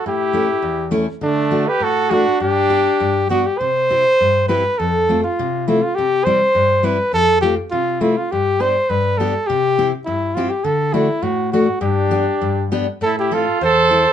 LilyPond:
<<
  \new Staff \with { instrumentName = "Flugelhorn" } { \time 2/4 \key g \major \tempo 4 = 102 g'4. r8 | d'8. b'16 a'8 fis'8 | g'4. fis'16 g'16 | \key c \major c''4. b'8 |
a'8. f'8. e'16 f'16 | g'8 c''4 b'8 | a'8 g'8 f'8 e'16 f'16 | g'8 c''8 b'8 a'8 |
g'8. r16 e'8 f'16 g'16 | a'8 e'8 fis'8 fis'8 | g'4. r8 | a'16 g'16 a'8 c''4 | }
  \new Staff \with { instrumentName = "Trumpet" } { \time 2/4 \key g \major e'4. r8 | a8. g'16 fis'8 d'8 | d'4. r8 | \key c \major r2 |
r2 | r2 | r2 | r2 |
r2 | r2 | d'4. r8 | e'16 e'16 f'8 a'4 | }
  \new Staff \with { instrumentName = "Steel-string acoustic guitar" } { \time 2/4 \key g \major << { r8 <a cis' e'>8 r8 <a cis' e'>8 | r8 <a d' fis'>8 r8 <a d' fis'>8 | r8 <b d' g'>8 r8 <b d' g'>8 | \key c \major r8 <c' e' g'>8 r8 <c' e' g'>8 |
r8 <a c' f'>8 r8 <a c' f'>8 | r8 <g c' e'>8 r8 <g c' e'>8 | r8 <a c' f'>8 r8 <a c' f'>8 | r8 <b d' g'>8 r8 <b d' g'>8 |
r8 <c' e' g'>8 r8 <c' e' g'>8 | r8 <a d' fis'>8 r8 <a d' fis'>8 | r8 <b d' g'>8 r8 <b d' g'>8 | r8 <c' e' a'>8 r8 <c' e' a'>8 | } \\ { a,4 e,4 | d4 a,4 | g,4 g,4 | c4 g,4 |
f,4 c4 | c4 g,4 | f,4 c4 | g,4 g,4 |
c4 g,4 | d4 a,4 | g,4 g,4 | a,4 e,4 | } >> }
>>